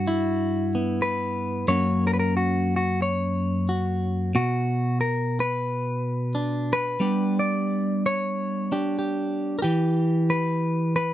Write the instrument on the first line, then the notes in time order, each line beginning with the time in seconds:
clean electric guitar
Already playing: G2 F#4
0.07 E4
0.75 B3
1.02 B4
1.68 F#2 A#3 C#4 F#4 C#5
2.07 A#4
2.13 B4
2.19 A#4
2.37 F#4
2.76 F#4
3.02 C#5
3.69 F#4
4.35 B2 F#4
5.01 A#4
5.40 B4
6.35 D4
6.73 B4
7.00 G3 B3 D4 G4
7.39 D5
8.06 C#5
8.72 D4 G4
8.99 G4
9.59 G4 A#4
9.64 E3
10.30 B4
10.96 B4